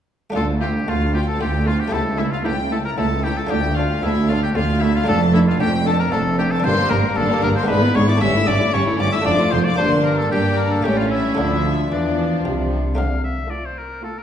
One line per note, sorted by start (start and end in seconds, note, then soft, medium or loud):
0.30 1.87 A3 soft
0.30 1.88 D4 medium
0.30 1.88 F4 soft
0.35 0.79 D2 medium
0.35 0.82 D2 medium
0.35 0.43 A3 medium
0.35 0.43 F4 medium
0.35 0.48 A4 medium
0.35 0.43 A5 loud
0.60 0.70 A3 medium
0.60 0.68 F4 medium
0.60 0.90 G4 medium
0.60 0.70 G5 medium
0.87 1.35 D2 medium
0.87 1.32 D2 medium
0.87 1.35 D2 medium
0.87 0.96 A3 medium
0.87 0.95 F4 medium
0.87 1.13 F4 medium
0.87 1.14 F5 medium
1.13 1.21 A3 medium
1.13 1.23 F4 medium
1.13 1.20 G4 medium
1.13 1.28 G5 medium
1.27 1.40 A4 medium
1.27 1.42 A5 medium
1.39 1.87 D2 medium
1.39 1.84 D2 medium
1.39 1.47 A3 medium
1.39 1.48 F4 medium
1.39 1.68 G4 medium
1.39 1.67 G5 medium
1.66 1.74 A3 medium
1.66 1.81 F4 medium
1.66 1.75 F4 medium
1.66 1.80 F5 medium
1.79 1.94 G4 medium
1.79 1.94 G5 medium
1.88 3.44 A3 soft
1.88 2.00 A3 medium
1.88 3.45 E4 medium
1.88 1.99 E4 medium
1.88 3.46 G4 medium
1.92 2.36 C#2 medium
1.92 2.40 C#2 medium
1.92 2.20 A4 medium
1.92 2.02 A5 loud
2.17 2.26 A3 medium
2.17 2.25 E4 medium
2.17 2.33 E4 medium
2.17 2.24 E5 medium
2.32 2.44 F4 medium
2.32 2.38 F5 medium
2.44 2.92 C#2 medium
2.44 2.89 C#2 medium
2.44 2.52 A3 medium
2.44 2.52 E4 medium
2.44 2.57 G4 medium
2.44 2.72 G5 medium
2.71 2.79 A3 medium
2.71 2.79 E4 medium
2.71 2.78 A4 medium
2.71 2.85 A5 medium
2.85 2.91 A#4 medium
2.85 2.99 A#5 medium
2.97 3.44 C#2 medium
2.97 3.41 C#2 medium
2.97 3.45 C#2 medium
2.97 3.06 A3 medium
2.97 3.05 E4 medium
2.97 3.25 A4 medium
2.97 3.24 A5 medium
3.23 3.32 A3 medium
3.23 3.32 E4 medium
3.23 3.38 G4 medium
3.23 3.37 G5 medium
3.37 3.51 A4 medium
3.37 3.51 A5 medium
3.47 3.97 D2 medium
3.47 5.02 A3 medium
3.47 5.03 D4 medium
3.47 3.59 D4 medium
3.47 5.04 F4 medium
3.47 3.75 G4 medium
3.47 3.76 G5 loud
3.51 3.94 D2 medium
3.51 3.59 A3 medium
3.76 3.85 A3 medium
3.76 3.86 D4 medium
3.76 4.02 F4 medium
3.76 4.03 F5 medium
4.02 4.49 D2 medium
4.02 4.50 D2 medium
4.02 4.47 D2 medium
4.02 4.11 A3 medium
4.02 4.12 D4 medium
4.02 4.31 E4 medium
4.02 4.29 E5 loud
4.29 4.38 A3 medium
4.29 4.39 D4 medium
4.29 4.42 F4 medium
4.29 4.42 F5 loud
4.43 4.57 G4 medium
4.43 4.49 G5 medium
4.55 5.02 D2 medium
4.55 4.99 D2 medium
4.55 5.02 D2 medium
4.55 4.64 A3 medium
4.55 4.65 D4 medium
4.55 4.83 F4 medium
4.55 4.81 F5 loud
4.81 4.90 A3 medium
4.81 4.91 D4 medium
4.81 4.94 E4 medium
4.81 4.95 E5 loud
4.95 5.07 F4 medium
4.95 5.09 F5 medium
5.04 5.54 F1 medium
5.04 6.59 A3 medium
5.04 5.15 A3 medium
5.04 6.59 D4 medium
5.04 5.16 D4 medium
5.04 6.60 F4 medium
5.04 5.34 A5 loud
5.08 5.51 F2 medium
5.08 5.55 F2 medium
5.08 5.20 A4 loud
5.34 5.42 A3 medium
5.34 5.43 D4 medium
5.34 5.40 E4 medium
5.34 5.39 E5 medium
5.48 5.60 F4 medium
5.48 5.54 F5 medium
5.59 6.06 F1 medium
5.59 6.04 F2 medium
5.59 6.07 F2 medium
5.59 5.68 A3 medium
5.59 5.67 D4 medium
5.59 5.72 G4 medium
5.59 5.86 G5 loud
5.86 5.94 A3 medium
5.86 5.94 D4 medium
5.86 5.98 A4 medium
5.86 6.00 A5 loud
5.99 6.11 A#4 medium
5.99 6.13 A#5 loud
6.11 6.59 F1 medium
6.11 6.56 F2 medium
6.11 6.59 F2 medium
6.11 6.20 A3 medium
6.11 6.19 D4 medium
6.11 6.38 A4 medium
6.11 6.21 A5 medium
6.37 6.46 A3 medium
6.37 6.45 D4 medium
6.37 6.52 G4 medium
6.37 6.44 G5 loud
6.51 6.66 A4 medium
6.51 6.65 A5 loud
6.60 7.64 D4 medium
6.60 6.76 D4 medium
6.64 6.73 G1 medium
6.64 6.88 G2 medium
6.64 6.73 G2 medium
6.64 6.77 A#3 medium
6.64 6.91 C5 loud
6.64 6.90 C6 loud
6.76 6.91 G3 medium
6.76 6.90 A#3 medium
6.89 6.99 G1 medium
6.89 7.14 G2 medium
6.89 6.99 G2 medium
6.89 7.03 A#3 medium
6.89 7.04 D4 medium
6.89 7.18 A#4 medium
6.89 7.17 A#5 loud
7.04 7.17 G3 medium
7.04 7.17 A#3 medium
7.16 7.26 G1 medium
7.16 7.40 G2 medium
7.16 7.25 G2 medium
7.16 7.29 A#3 medium
7.16 7.29 D4 medium
7.16 7.43 A4 medium
7.16 7.42 A5 loud
7.30 7.43 G3 medium
7.30 7.44 A#3 medium
7.42 7.52 G1 medium
7.42 7.66 G2 medium
7.42 7.52 G2 medium
7.42 7.56 A#3 medium
7.42 7.56 D4 medium
7.42 7.49 A#4 medium
7.42 7.56 A#5 loud
7.56 7.69 G3 medium
7.56 7.69 A#3 medium
7.56 7.70 C5 medium
7.56 7.63 C6 loud
7.63 8.17 G#3 medium
7.63 8.18 B3 medium
7.63 8.19 D4 medium
7.68 7.78 G#1 medium
7.68 7.93 G#2 medium
7.68 7.78 G#2 medium
7.68 7.82 G#3 medium
7.68 7.81 D4 medium
7.68 8.19 E4 medium
7.68 7.97 B4 loud
7.68 7.95 B5 loud
7.82 7.96 B3 medium
7.82 7.96 E4 medium
7.95 8.04 G#1 medium
7.95 8.19 G#2 medium
7.95 8.04 G#2 medium
7.95 8.09 G#3 medium
7.95 8.09 D4 medium
7.95 8.08 C#5 loud
7.95 8.08 C#6 loud
8.08 8.22 B3 medium
8.08 8.22 E4 medium
8.08 8.20 D5 medium
8.08 8.22 D6 loud
8.17 9.20 A3 medium
8.17 9.22 C#4 medium
8.17 9.23 E4 medium
8.17 8.48 E5 loud
8.17 8.47 E6 loud
8.21 8.30 G1 medium
8.21 8.45 G2 medium
8.21 8.30 G2 medium
8.21 8.34 G3 medium
8.21 8.34 C#4 medium
8.34 8.48 A3 medium
8.34 8.48 E4 medium
8.47 8.56 G1 medium
8.47 8.72 G2 medium
8.47 8.56 G2 medium
8.47 8.61 G3 medium
8.47 8.61 C#4 medium
8.47 8.75 D5 loud
8.47 8.74 D6 loud
8.60 8.74 A3 medium
8.60 8.74 E4 medium
8.73 8.82 G1 medium
8.73 8.98 G2 medium
8.73 8.83 G2 medium
8.73 8.87 G3 medium
8.73 8.86 C#4 medium
8.73 9.01 C#5 medium
8.73 8.82 C#6 loud
8.86 9.00 A3 medium
8.86 9.00 E4 medium
8.97 9.08 G1 medium
8.97 9.24 G2 medium
8.97 9.09 G2 medium
8.97 9.14 G3 medium
8.97 9.12 C#4 medium
8.97 9.11 D5 medium
8.97 9.13 D6 loud
9.12 9.26 A3 medium
9.12 9.26 E4 medium
9.12 9.25 E5 medium
9.12 9.27 E6 loud
9.21 9.75 A3 medium
9.21 9.76 D4 medium
9.21 9.37 D4 medium
9.21 9.77 F4 medium
9.25 9.35 F1 medium
9.25 9.50 F2 medium
9.25 9.35 F2 medium
9.25 9.39 F3 medium
9.25 9.53 D5 medium
9.25 9.53 D6 loud
9.39 9.53 A3 medium
9.39 9.52 F4 medium
9.51 9.61 F1 medium
9.51 9.76 F2 medium
9.51 9.62 F2 medium
9.51 9.65 F3 medium
9.51 9.66 D4 medium
9.51 9.66 C5 medium
9.51 9.58 C6 loud
9.64 9.78 A3 medium
9.64 9.79 F4 medium
9.64 9.77 D5 medium
9.64 9.80 D6 loud
9.76 10.28 G1 medium
9.76 10.28 G2 medium
9.76 10.80 A#3 medium
9.76 10.28 A#3 medium
9.76 10.81 D4 medium
9.76 10.28 D4 medium
9.76 9.90 C5 loud
9.76 10.05 C6 loud
10.04 10.17 A#4 medium
10.04 10.18 A#5 medium
10.17 10.31 A4 medium
10.17 10.25 A5 medium
10.30 10.85 G2 medium
10.30 10.85 G3 medium
10.30 10.81 G3 medium
10.30 10.83 A#3 medium
10.30 10.83 D4 medium
10.30 10.57 G4 medium
10.30 10.58 G5 loud
10.57 10.70 A#4 medium
10.57 10.71 A#5 medium
10.71 10.85 A4 medium
10.71 10.86 A5 medium
10.83 11.37 A1 medium
10.83 11.37 A2 medium
10.83 11.34 A2 medium
10.83 11.38 G3 medium
10.83 11.34 A3 medium
10.83 11.37 C#4 medium
10.83 11.36 C#4 medium
10.83 10.98 G4 medium
10.83 10.98 G5 loud
10.97 11.10 F4 medium
10.97 11.05 F5 medium
11.11 11.37 E4 medium
11.11 11.37 E5 medium
11.35 11.90 D2 medium
11.35 11.90 D3 medium
11.35 11.87 D3 medium
11.35 11.90 F3 medium
11.35 11.88 A3 soft
11.35 12.93 D4 medium
11.35 11.90 D4 medium
11.35 11.72 E4 medium
11.35 11.91 E5 loud
11.92 12.44 E2 medium
11.92 12.44 E3 medium
11.92 12.41 E3 medium
11.92 12.76 F3 medium
11.92 12.76 D4 medium
11.92 12.41 D4 medium
11.92 12.45 D5 medium
12.45 12.97 C2 medium
12.45 12.97 C3 medium
12.45 12.94 C3 medium
12.95 13.39 D2 medium
12.95 13.39 D3 medium
12.95 13.39 D3 soft
12.95 14.23 A3 soft
12.95 14.23 D4 soft
12.95 13.22 F5 medium
13.24 13.52 E5 medium
13.50 13.89 A3 soft
13.50 13.90 F4 soft
13.50 13.67 D5 medium
13.50 13.90 A5 soft
13.65 13.79 C5 medium
13.78 14.03 A#4 medium
14.02 14.23 A3 soft
14.02 14.23 F4 soft
14.02 14.20 A4 medium
14.02 14.23 A5 soft
14.18 14.23 A#4 medium